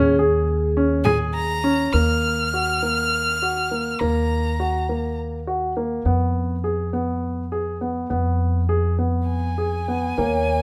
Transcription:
0, 0, Header, 1, 6, 480
1, 0, Start_track
1, 0, Key_signature, -6, "minor"
1, 0, Tempo, 587659
1, 1585, Time_signature, 7, 3, 24, 8
1, 8674, End_track
2, 0, Start_track
2, 0, Title_t, "Violin"
2, 0, Program_c, 0, 40
2, 850, Note_on_c, 0, 80, 79
2, 960, Note_off_c, 0, 80, 0
2, 1092, Note_on_c, 0, 82, 91
2, 1576, Note_on_c, 0, 89, 75
2, 1588, Note_off_c, 0, 82, 0
2, 3261, Note_on_c, 0, 82, 66
2, 3273, Note_off_c, 0, 89, 0
2, 4224, Note_off_c, 0, 82, 0
2, 7576, Note_on_c, 0, 80, 69
2, 8674, Note_off_c, 0, 80, 0
2, 8674, End_track
3, 0, Start_track
3, 0, Title_t, "Vibraphone"
3, 0, Program_c, 1, 11
3, 0, Note_on_c, 1, 68, 82
3, 1309, Note_off_c, 1, 68, 0
3, 8311, Note_on_c, 1, 73, 69
3, 8674, Note_off_c, 1, 73, 0
3, 8674, End_track
4, 0, Start_track
4, 0, Title_t, "Grand piano"
4, 0, Program_c, 2, 0
4, 0, Note_on_c, 2, 61, 95
4, 116, Note_off_c, 2, 61, 0
4, 155, Note_on_c, 2, 68, 70
4, 553, Note_off_c, 2, 68, 0
4, 628, Note_on_c, 2, 61, 70
4, 828, Note_off_c, 2, 61, 0
4, 858, Note_on_c, 2, 68, 79
4, 1266, Note_off_c, 2, 68, 0
4, 1338, Note_on_c, 2, 61, 69
4, 1544, Note_off_c, 2, 61, 0
4, 1582, Note_on_c, 2, 58, 59
4, 1993, Note_off_c, 2, 58, 0
4, 2072, Note_on_c, 2, 66, 54
4, 2274, Note_off_c, 2, 66, 0
4, 2308, Note_on_c, 2, 58, 52
4, 2716, Note_off_c, 2, 58, 0
4, 2797, Note_on_c, 2, 66, 54
4, 2999, Note_off_c, 2, 66, 0
4, 3033, Note_on_c, 2, 58, 48
4, 3236, Note_off_c, 2, 58, 0
4, 3274, Note_on_c, 2, 58, 63
4, 3680, Note_off_c, 2, 58, 0
4, 3755, Note_on_c, 2, 66, 56
4, 3956, Note_off_c, 2, 66, 0
4, 3995, Note_on_c, 2, 58, 56
4, 4395, Note_off_c, 2, 58, 0
4, 4471, Note_on_c, 2, 66, 58
4, 4670, Note_off_c, 2, 66, 0
4, 4710, Note_on_c, 2, 58, 55
4, 4909, Note_off_c, 2, 58, 0
4, 4947, Note_on_c, 2, 59, 64
4, 5350, Note_off_c, 2, 59, 0
4, 5423, Note_on_c, 2, 68, 59
4, 5624, Note_off_c, 2, 68, 0
4, 5661, Note_on_c, 2, 59, 60
4, 6065, Note_off_c, 2, 59, 0
4, 6142, Note_on_c, 2, 68, 58
4, 6343, Note_off_c, 2, 68, 0
4, 6380, Note_on_c, 2, 59, 55
4, 6582, Note_off_c, 2, 59, 0
4, 6616, Note_on_c, 2, 59, 65
4, 7022, Note_off_c, 2, 59, 0
4, 7097, Note_on_c, 2, 68, 62
4, 7301, Note_off_c, 2, 68, 0
4, 7339, Note_on_c, 2, 59, 55
4, 7748, Note_off_c, 2, 59, 0
4, 7824, Note_on_c, 2, 68, 56
4, 8030, Note_off_c, 2, 68, 0
4, 8072, Note_on_c, 2, 59, 54
4, 8277, Note_off_c, 2, 59, 0
4, 8315, Note_on_c, 2, 58, 66
4, 8674, Note_off_c, 2, 58, 0
4, 8674, End_track
5, 0, Start_track
5, 0, Title_t, "Upright bass"
5, 0, Program_c, 3, 32
5, 0, Note_on_c, 3, 39, 75
5, 1550, Note_off_c, 3, 39, 0
5, 1580, Note_on_c, 3, 39, 48
5, 3239, Note_off_c, 3, 39, 0
5, 3273, Note_on_c, 3, 39, 52
5, 4910, Note_off_c, 3, 39, 0
5, 4942, Note_on_c, 3, 41, 51
5, 6585, Note_off_c, 3, 41, 0
5, 6621, Note_on_c, 3, 41, 57
5, 8281, Note_off_c, 3, 41, 0
5, 8315, Note_on_c, 3, 39, 57
5, 8674, Note_off_c, 3, 39, 0
5, 8674, End_track
6, 0, Start_track
6, 0, Title_t, "Frame drum"
6, 391, Note_on_c, 9, 64, 18
6, 472, Note_off_c, 9, 64, 0
6, 861, Note_on_c, 9, 64, 57
6, 943, Note_off_c, 9, 64, 0
6, 8674, End_track
0, 0, End_of_file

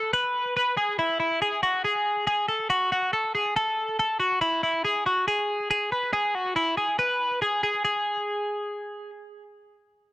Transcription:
0, 0, Header, 1, 2, 480
1, 0, Start_track
1, 0, Key_signature, 4, "major"
1, 0, Tempo, 429492
1, 1100, Time_signature, 4, 2, 24, 8
1, 11318, End_track
2, 0, Start_track
2, 0, Title_t, "Clean electric guitar"
2, 0, Program_c, 0, 27
2, 0, Note_on_c, 0, 69, 74
2, 146, Note_off_c, 0, 69, 0
2, 150, Note_on_c, 0, 71, 106
2, 596, Note_off_c, 0, 71, 0
2, 633, Note_on_c, 0, 71, 82
2, 859, Note_off_c, 0, 71, 0
2, 863, Note_on_c, 0, 68, 72
2, 1101, Note_off_c, 0, 68, 0
2, 1105, Note_on_c, 0, 64, 85
2, 1325, Note_off_c, 0, 64, 0
2, 1339, Note_on_c, 0, 64, 71
2, 1578, Note_off_c, 0, 64, 0
2, 1586, Note_on_c, 0, 68, 71
2, 1817, Note_off_c, 0, 68, 0
2, 1821, Note_on_c, 0, 66, 74
2, 2058, Note_off_c, 0, 66, 0
2, 2063, Note_on_c, 0, 68, 80
2, 2510, Note_off_c, 0, 68, 0
2, 2539, Note_on_c, 0, 68, 76
2, 2773, Note_off_c, 0, 68, 0
2, 2777, Note_on_c, 0, 69, 68
2, 3012, Note_off_c, 0, 69, 0
2, 3016, Note_on_c, 0, 66, 89
2, 3251, Note_off_c, 0, 66, 0
2, 3264, Note_on_c, 0, 66, 69
2, 3495, Note_off_c, 0, 66, 0
2, 3500, Note_on_c, 0, 69, 69
2, 3737, Note_off_c, 0, 69, 0
2, 3742, Note_on_c, 0, 68, 59
2, 3978, Note_off_c, 0, 68, 0
2, 3983, Note_on_c, 0, 69, 85
2, 4430, Note_off_c, 0, 69, 0
2, 4463, Note_on_c, 0, 69, 76
2, 4685, Note_off_c, 0, 69, 0
2, 4690, Note_on_c, 0, 66, 69
2, 4928, Note_off_c, 0, 66, 0
2, 4933, Note_on_c, 0, 64, 85
2, 5163, Note_off_c, 0, 64, 0
2, 5177, Note_on_c, 0, 64, 65
2, 5412, Note_off_c, 0, 64, 0
2, 5416, Note_on_c, 0, 68, 74
2, 5654, Note_off_c, 0, 68, 0
2, 5658, Note_on_c, 0, 66, 69
2, 5893, Note_off_c, 0, 66, 0
2, 5898, Note_on_c, 0, 68, 74
2, 6348, Note_off_c, 0, 68, 0
2, 6377, Note_on_c, 0, 68, 74
2, 6614, Note_off_c, 0, 68, 0
2, 6619, Note_on_c, 0, 71, 64
2, 6848, Note_off_c, 0, 71, 0
2, 6852, Note_on_c, 0, 68, 85
2, 7096, Note_off_c, 0, 68, 0
2, 7096, Note_on_c, 0, 66, 61
2, 7327, Note_off_c, 0, 66, 0
2, 7332, Note_on_c, 0, 64, 65
2, 7566, Note_off_c, 0, 64, 0
2, 7571, Note_on_c, 0, 68, 59
2, 7806, Note_off_c, 0, 68, 0
2, 7811, Note_on_c, 0, 71, 76
2, 8265, Note_off_c, 0, 71, 0
2, 8292, Note_on_c, 0, 68, 66
2, 8518, Note_off_c, 0, 68, 0
2, 8531, Note_on_c, 0, 68, 60
2, 8755, Note_off_c, 0, 68, 0
2, 8769, Note_on_c, 0, 68, 67
2, 10172, Note_off_c, 0, 68, 0
2, 11318, End_track
0, 0, End_of_file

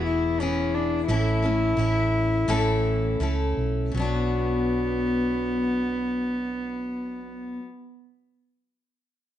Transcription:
0, 0, Header, 1, 4, 480
1, 0, Start_track
1, 0, Tempo, 683371
1, 763, Time_signature, 4, 2, 24, 8
1, 1248, Tempo, 712589
1, 2208, Tempo, 745342
1, 6192, End_track
2, 0, Start_track
2, 0, Title_t, "Cello"
2, 0, Program_c, 0, 42
2, 44, Note_on_c, 0, 64, 65
2, 285, Note_on_c, 0, 61, 70
2, 296, Note_off_c, 0, 64, 0
2, 526, Note_on_c, 0, 62, 62
2, 536, Note_off_c, 0, 61, 0
2, 764, Note_off_c, 0, 62, 0
2, 768, Note_on_c, 0, 64, 70
2, 2184, Note_off_c, 0, 64, 0
2, 2687, Note_on_c, 0, 59, 71
2, 5025, Note_off_c, 0, 59, 0
2, 6192, End_track
3, 0, Start_track
3, 0, Title_t, "Steel-string acoustic guitar"
3, 0, Program_c, 1, 25
3, 0, Note_on_c, 1, 52, 63
3, 0, Note_on_c, 1, 59, 67
3, 0, Note_on_c, 1, 64, 61
3, 0, Note_on_c, 1, 68, 72
3, 272, Note_off_c, 1, 52, 0
3, 277, Note_off_c, 1, 59, 0
3, 281, Note_on_c, 1, 52, 49
3, 283, Note_off_c, 1, 64, 0
3, 285, Note_off_c, 1, 68, 0
3, 286, Note_on_c, 1, 59, 49
3, 293, Note_on_c, 1, 64, 54
3, 299, Note_on_c, 1, 68, 53
3, 757, Note_off_c, 1, 52, 0
3, 761, Note_on_c, 1, 45, 47
3, 763, Note_off_c, 1, 59, 0
3, 765, Note_off_c, 1, 64, 0
3, 766, Note_on_c, 1, 52, 58
3, 768, Note_on_c, 1, 57, 51
3, 770, Note_off_c, 1, 68, 0
3, 770, Note_on_c, 1, 61, 60
3, 773, Note_on_c, 1, 64, 56
3, 775, Note_on_c, 1, 69, 63
3, 991, Note_off_c, 1, 69, 0
3, 1000, Note_off_c, 1, 64, 0
3, 1000, Note_on_c, 1, 69, 34
3, 1004, Note_off_c, 1, 45, 0
3, 1005, Note_off_c, 1, 61, 0
3, 1006, Note_off_c, 1, 52, 0
3, 1007, Note_off_c, 1, 57, 0
3, 1009, Note_on_c, 1, 64, 31
3, 1014, Note_on_c, 1, 61, 31
3, 1020, Note_on_c, 1, 57, 29
3, 1233, Note_off_c, 1, 57, 0
3, 1241, Note_on_c, 1, 57, 39
3, 1244, Note_off_c, 1, 61, 0
3, 1246, Note_off_c, 1, 69, 0
3, 1251, Note_off_c, 1, 64, 0
3, 1252, Note_on_c, 1, 61, 41
3, 1258, Note_on_c, 1, 64, 50
3, 1262, Note_on_c, 1, 69, 43
3, 1718, Note_off_c, 1, 57, 0
3, 1720, Note_on_c, 1, 45, 60
3, 1721, Note_off_c, 1, 61, 0
3, 1723, Note_on_c, 1, 52, 60
3, 1724, Note_off_c, 1, 64, 0
3, 1724, Note_off_c, 1, 69, 0
3, 1726, Note_on_c, 1, 57, 63
3, 1729, Note_on_c, 1, 61, 69
3, 1732, Note_on_c, 1, 64, 63
3, 1732, Note_on_c, 1, 69, 79
3, 2199, Note_off_c, 1, 57, 0
3, 2205, Note_off_c, 1, 61, 0
3, 2206, Note_off_c, 1, 45, 0
3, 2207, Note_on_c, 1, 57, 51
3, 2208, Note_off_c, 1, 52, 0
3, 2212, Note_off_c, 1, 64, 0
3, 2212, Note_off_c, 1, 69, 0
3, 2213, Note_on_c, 1, 61, 49
3, 2220, Note_on_c, 1, 64, 48
3, 2224, Note_on_c, 1, 69, 56
3, 2667, Note_on_c, 1, 47, 53
3, 2682, Note_off_c, 1, 57, 0
3, 2685, Note_off_c, 1, 61, 0
3, 2687, Note_on_c, 1, 54, 53
3, 2688, Note_off_c, 1, 64, 0
3, 2690, Note_off_c, 1, 69, 0
3, 2705, Note_on_c, 1, 59, 62
3, 2719, Note_on_c, 1, 62, 55
3, 2732, Note_on_c, 1, 66, 54
3, 5032, Note_off_c, 1, 47, 0
3, 5051, Note_off_c, 1, 54, 0
3, 5069, Note_off_c, 1, 59, 0
3, 5083, Note_off_c, 1, 62, 0
3, 5096, Note_off_c, 1, 66, 0
3, 6192, End_track
4, 0, Start_track
4, 0, Title_t, "Fingered electric bass"
4, 0, Program_c, 2, 33
4, 0, Note_on_c, 2, 28, 61
4, 731, Note_off_c, 2, 28, 0
4, 762, Note_on_c, 2, 33, 75
4, 1224, Note_off_c, 2, 33, 0
4, 1245, Note_on_c, 2, 33, 72
4, 1698, Note_off_c, 2, 33, 0
4, 1723, Note_on_c, 2, 33, 67
4, 2184, Note_off_c, 2, 33, 0
4, 2208, Note_on_c, 2, 37, 63
4, 2420, Note_off_c, 2, 37, 0
4, 2446, Note_on_c, 2, 35, 55
4, 2659, Note_off_c, 2, 35, 0
4, 2684, Note_on_c, 2, 35, 60
4, 5023, Note_off_c, 2, 35, 0
4, 6192, End_track
0, 0, End_of_file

